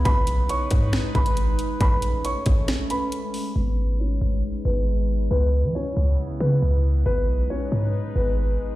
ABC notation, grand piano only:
X:1
M:4/4
L:1/8
Q:1/4=137
K:G#phr
V:1 name="Grand piano"
[Bb]2 [cc']2 z [Bb]3 | [Bb]2 [cc']2 z [Bb]3 | [B,B]2 [Cc]2 z [B,B]3 | [B,B]2 [Cc]2 z [B,B]3 |
[B,B]2 [Cc]2 z [B,B]3 |]